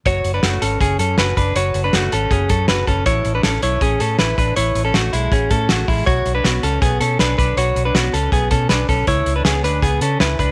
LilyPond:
<<
  \new Staff \with { instrumentName = "Clean electric guitar" } { \time 4/4 \key fis \minor \tempo 4 = 160 <fis' cis''>8. <d' b'>16 <a fis'>8 <cis' a'>8 <cis' gis'>8 <cis' a'>8 <fis' b'>8 <d' b'>8 | <fis' cis''>8. <d' b'>16 <a fis'>8 <cis' a'>8 <cis' gis'>8 <cis' a'>8 <fis' b'>8 <cis' a'>8 | <e' cis''>8. <d' b'>16 <cis' a'>8 <e' cis''>8 <cis' gis'>8 <cis' a'>8 <e' b'>8 <d' b'>8 | <e' cis''>8. <cis' a'>16 <a fis'>8 <gis e'>8 <cis' gis'>8 <cis' a'>8 <a fis'>8 <gis e'>8 |
<fis' cis''>8. <d' b'>16 <b fis'>8 <cis' a'>8 <b gis'>8 <cis' a'>8 <d' b'>8 <d' b'>8 | <fis' cis''>8. <d' b'>16 <b fis'>8 <cis' a'>8 <b gis'>8 <cis' a'>8 <d' b'>8 <cis' a'>8 | <e' cis''>8. <d' b'>16 <b gis'>8 <d' b'>8 <b gis'>8 <cis' a'>8 <e' b'>8 <d' b'>8 | }
  \new Staff \with { instrumentName = "Fingered electric bass" } { \clef bass \time 4/4 \key fis \minor fis,,8 fis,,8 fis,,8 gis,,8 fis,,8 fis,8 fis,,8 fis,,8 | fis,,8 fis,,8 fis,,8 gis,,8 fis,,8 fis,8 fis,,8 fis,,8 | a,,8 a,,8 a,,8 b,,8 a,,8 a,8 a,,8 a,,8 | a,,8 a,,8 a,,8 b,,8 a,,8 a,8 a,,8 a,,8 |
b,,8 b,,8 b,,8 cis,8 b,,8 b,8 b,,8 b,,8 | b,,8 b,,8 b,,8 cis,8 b,,8 b,8 b,,8 b,,8 | cis,8 cis,8 cis,8 d,8 cis,8 cis8 cis,8 cis,8 | }
  \new DrumStaff \with { instrumentName = "Drums" } \drummode { \time 4/4 <hh bd>8 hh8 <hh sn>8 hh8 <hh bd>8 hh8 <hh sn>8 <hh bd>8 | hh8 hh8 <hh sn>8 hh8 <hh bd>8 <hh bd>8 <hh sn>8 <hh bd>8 | <hh bd>8 hh8 <hh sn>8 hh8 <hh bd>8 hh8 <hh sn>8 <hh bd>8 | hh8 hh8 <hh sn>8 hh8 <hh bd>8 <hh bd>8 <hh sn>8 <hho bd>8 |
<hh bd>8 hh8 <hh sn>8 hh8 <hh bd>8 hh8 <hh sn>8 <hh bd>8 | hh8 hh8 <hh sn>8 hh8 <hh bd>8 <hh bd>8 <hh sn>8 <hh bd>8 | <hh bd>8 hh8 <hh sn>8 hh8 <hh bd>8 hh8 <hh sn>8 <hh bd>8 | }
>>